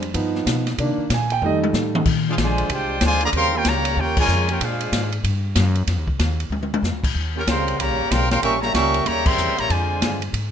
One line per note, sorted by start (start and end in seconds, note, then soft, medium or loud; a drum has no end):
0.00 0.14 F2 loud
0.00 ride medium
0.14 0.45 G2 medium
0.14 0.63 F3 medium
0.14 0.64 B3 soft
0.14 0.64 D#4 medium
0.14 kick soft
0.14 ride medium
0.35 snare soft
0.46 0.77 B2 loud
0.46 kick soft
0.46 snare medium
0.46 hi-hat pedal medium
0.46 ride medium
0.67 snare soft
0.67 ride medium
0.78 0.97 C3 medium
0.78 1.02 D#3 soft
0.78 1.02 A#3 soft
0.78 1.03 D4 medium
0.78 kick soft
0.78 ride medium
0.98 muted upright bass stroke soft
1.10 1.41 A#2 loud
1.10 kick soft
1.10 snare medium
1.10 hi-hat pedal medium
1.10 ride medium
1.14 1.31 G#5 medium
1.30 1.43 G5 medium
1.30 ride medium
1.42 1.73 F2 loud
1.42 2.03 G3 medium
1.42 2.03 A3 medium
1.42 2.04 D#4 medium
1.42 mid tom medium
1.46 1.57 D#5 medium
1.64 high tom medium
1.73 2.04 A2 loud
1.73 snare medium
1.73 hi-hat pedal medium
1.95 mid tom loud
2.06 2.36 A#2 medium
2.06 kick medium
2.06 crash medium
2.28 2.33 G#3 medium
2.28 2.33 D4 medium
2.28 2.34 D4 medium
2.28 2.33 F4 medium
2.28 2.34 G#4 medium
2.28 2.34 C5 medium
2.28 2.34 F5 medium
2.37 2.68 A#1 medium
2.37 2.69 D3 medium
2.37 2.69 F3 medium
2.37 2.69 G#3 medium
2.37 kick soft
2.37 snare medium
2.37 hi-hat pedal medium
2.37 ride medium
2.41 2.69 F4 medium
2.41 2.69 C5 medium
2.41 2.69 D5 medium
2.41 2.69 G#5 medium
2.58 ride medium
2.69 3.00 C2 medium
2.69 3.00 G#3 medium
2.69 3.02 D4 medium
2.69 3.02 F4 medium
2.69 3.02 G4 medium
2.69 3.03 C5 medium
2.69 3.03 D5 medium
2.69 3.03 G5 loud
2.69 kick soft
2.69 ride medium
3.01 3.32 D2 loud
3.01 3.19 D3 medium
3.01 3.20 F3 medium
3.01 3.20 G#3 medium
3.01 kick soft
3.01 snare medium
3.01 hi-hat pedal medium
3.01 ride medium
3.05 3.22 F4 medium
3.05 3.22 C5 loud
3.05 3.22 D5 medium
3.05 3.22 G#5 loud
3.21 3.27 D3 medium
3.21 3.27 F3 medium
3.21 3.27 A#3 medium
3.21 3.29 D5 medium
3.21 3.29 F5 medium
3.21 3.29 A#5 loud
3.21 ride medium
3.25 3.29 G#4 medium
3.32 3.64 D#2 medium
3.32 3.51 C#3 medium
3.32 3.51 G3 loud
3.32 3.51 C4 loud
3.32 3.53 A#4 loud
3.32 3.53 F5 medium
3.32 3.53 G5 medium
3.32 3.53 C6 loud
3.32 kick soft
3.32 ride medium
3.54 3.65 A#3 medium
3.54 3.66 C#4 medium
3.54 3.66 F4 medium
3.54 3.66 G4 medium
3.54 3.66 A#4 medium
3.54 3.66 C#5 medium
3.54 3.66 G5 loud
3.65 3.96 C#2 loud
3.65 3.97 C#3 loud
3.65 3.97 G3 medium
3.65 3.97 A#3 medium
3.65 3.98 G4 medium
3.65 3.98 C#5 medium
3.65 3.98 F5 medium
3.65 3.98 A#5 loud
3.65 kick soft
3.65 snare medium
3.65 hi-hat pedal medium
3.65 ride medium
3.85 ride medium
3.96 4.27 D#2 medium
3.96 4.17 A#3 medium
3.96 4.17 C#4 medium
3.96 4.18 F4 medium
3.96 4.17 G4 medium
3.96 4.18 C#5 medium
3.96 4.18 G5 loud
3.96 kick soft
4.00 4.18 A#4 medium
4.17 4.47 A#2 medium
4.17 4.47 C#3 medium
4.17 4.47 G#3 medium
4.17 4.47 F4 medium
4.17 4.47 A#4 medium
4.17 4.47 C#5 medium
4.17 4.48 G#5 loud
4.17 kick loud
4.17 crash medium
4.28 4.59 F2 loud
4.28 hi-hat pedal medium
4.49 4.61 A#3 medium
4.49 4.61 C#4 medium
4.49 4.62 F4 medium
4.49 4.60 G4 medium
4.49 4.62 A#4 medium
4.49 4.62 C#5 medium
4.49 4.62 G5 loud
4.49 ride medium
4.60 4.91 A#2 medium
4.60 5.12 G#3 medium
4.60 5.12 D4 medium
4.60 5.13 D4 medium
4.60 5.12 F4 medium
4.60 5.13 G#4 medium
4.60 5.13 C5 medium
4.60 5.13 F5 medium
4.60 kick soft
4.60 ride medium
4.81 ride medium
4.92 5.23 G#2 loud
4.92 kick soft
4.92 snare medium
4.92 hi-hat pedal medium
4.92 ride medium
5.12 ride medium
5.24 5.55 G2 medium
5.24 kick soft
5.24 ride medium
5.56 5.87 F#2 loud
5.56 kick soft
5.56 snare medium
5.56 hi-hat pedal medium
5.56 ride medium
5.75 ride medium
5.87 5.98 F2 loud
5.87 kick soft
5.87 snare soft
5.87 ride medium
5.98 6.08 D#2 medium
6.07 6.18 C2 medium
6.07 kick medium
6.19 6.49 D#2 medium
6.19 kick soft
6.19 snare medium
6.19 hi-hat pedal medium
6.19 ride medium
6.40 ride medium
6.50 6.81 D2 medium
6.50 high tom medium
6.63 high tom medium
6.74 high tom loud
6.83 6.92 F2 medium
6.83 snare medium
6.83 hi-hat pedal medium
6.92 7.02 D2 medium
7.03 7.13 A#1 medium
7.03 kick medium
7.03 crash medium
7.15 7.46 D#2 medium
7.15 kick soft
7.35 7.40 A#3 medium
7.35 7.40 C#4 medium
7.35 7.42 F4 medium
7.35 7.41 G4 medium
7.35 7.42 A#4 medium
7.35 7.42 C#5 medium
7.35 7.42 G5 medium
7.47 7.78 C#2 medium
7.47 7.77 C#3 medium
7.47 7.77 G3 medium
7.47 7.77 C4 medium
7.47 7.77 A#4 medium
7.47 7.77 F5 medium
7.47 7.77 G5 medium
7.47 7.77 C6 loud
7.47 kick soft
7.47 snare medium
7.47 hi-hat pedal medium
7.47 ride medium
7.68 ride medium
7.79 7.89 C2 loud
7.79 8.09 C#3 medium
7.79 8.09 G3 medium
7.79 8.10 A#3 medium
7.79 8.11 G4 medium
7.79 8.11 C#5 medium
7.79 8.09 F5 medium
7.79 8.11 A#5 loud
7.79 kick soft
7.79 ride medium
7.89 7.99 A#1 medium
7.99 8.09 G1 medium
8.10 8.42 B1 loud
8.10 8.28 C#3 medium
8.10 8.28 G3 medium
8.10 8.28 C4 medium
8.10 8.30 A#4 loud
8.10 8.30 F5 loud
8.10 8.30 G5 loud
8.10 8.30 C6 loud
8.10 kick soft
8.10 snare medium
8.10 hi-hat pedal medium
8.10 ride medium
8.29 8.41 C#3 medium
8.29 8.40 G3 medium
8.29 8.41 C4 medium
8.29 8.41 A#4 loud
8.29 8.42 F5 loud
8.29 8.41 G5 loud
8.29 8.42 C6 loud
8.29 snare medium
8.29 ride medium
8.41 8.73 A#1 medium
8.41 8.56 G3 loud
8.41 8.56 A#3 loud
8.41 8.56 C#4 loud
8.41 8.56 A#4 medium
8.41 8.56 E5 loud
8.41 8.56 G5 medium
8.41 8.56 C#6 loud
8.41 kick soft
8.41 ride medium
8.60 8.73 C#3 medium
8.60 8.71 G3 medium
8.60 8.71 A#3 medium
8.60 8.74 G4 medium
8.60 8.74 C#5 medium
8.60 8.73 E5 medium
8.60 8.63 A5 medium
8.60 8.74 A#5 loud
8.60 snare soft
8.72 9.05 C#2 loud
8.72 9.02 G3 loud
8.72 9.02 A#3 medium
8.72 9.02 C#4 loud
8.72 9.04 A#4 medium
8.72 9.04 E5 medium
8.72 9.04 G5 medium
8.72 9.03 C#6 loud
8.72 kick soft
8.72 snare medium
8.72 hi-hat pedal medium
8.72 ride medium
8.94 ride medium
9.03 9.37 D#2 medium
9.03 9.23 C#3 medium
9.03 9.22 G3 medium
9.03 9.25 A#3 medium
9.03 9.26 G4 medium
9.03 9.26 C#5 medium
9.03 9.25 E5 medium
9.03 9.26 A#5 loud
9.03 kick soft
9.03 ride medium
9.24 9.56 C#3 loud
9.24 9.55 G3 loud
9.24 9.57 C4 medium
9.24 9.58 A#4 medium
9.24 9.57 E5 loud
9.24 9.58 G5 medium
9.24 9.58 C6 loud
9.24 kick loud
9.24 crash medium
9.37 9.49 E2 loud
9.37 hi-hat pedal medium
9.49 9.58 C#2 medium
9.56 9.69 A#1 medium
9.56 9.70 C#3 medium
9.56 9.69 G3 medium
9.56 9.69 A#3 medium
9.56 9.70 G4 medium
9.56 9.70 C#5 medium
9.56 9.70 E5 medium
9.56 9.70 A#5 loud
9.56 ride medium
9.69 10.01 F2 loud
9.69 10.21 D3 medium
9.69 10.22 F3 medium
9.69 10.21 G#3 medium
9.69 10.21 F4 medium
9.69 10.22 C5 medium
9.69 10.22 D5 medium
9.69 10.21 G#5 medium
9.69 kick soft
9.69 ride medium
10.01 10.32 G2 loud
10.01 kick soft
10.01 snare medium
10.01 hi-hat pedal medium
10.01 ride medium
10.22 ride medium
10.33 10.52 G#2 medium
10.33 kick soft
10.33 ride medium